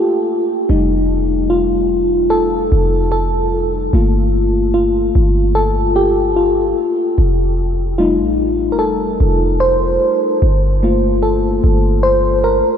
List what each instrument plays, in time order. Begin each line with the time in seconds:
Already playing: fm electric piano F4 G4 A4
0.69 808-style bass F1, fm electric piano G3 A3 D#4
1.50 fm electric piano F4
2.30 fm electric piano A4
2.72 808-style bass F1
3.12 fm electric piano A4
3.93 808-style bass G1, fm electric piano A3 A#3 F4
4.74 fm electric piano F4
5.15 808-style bass G1
5.55 fm electric piano A4
5.96 fm electric piano G4
6.36 fm electric piano F4
7.18 808-style bass F1
7.98 fm electric piano G3 A3 D#4 F4
8.19 808-style bass A1
8.70 808-style bass F1, fm electric piano A#4
8.79 fm electric piano A4
9.20 808-style bass F1
9.60 fm electric piano C5
10.42 808-style bass G1
10.83 fm electric piano A3 A#3 F4
11.23 fm electric piano A4
11.64 808-style bass G1
12.03 fm electric piano C5
12.44 fm electric piano A#4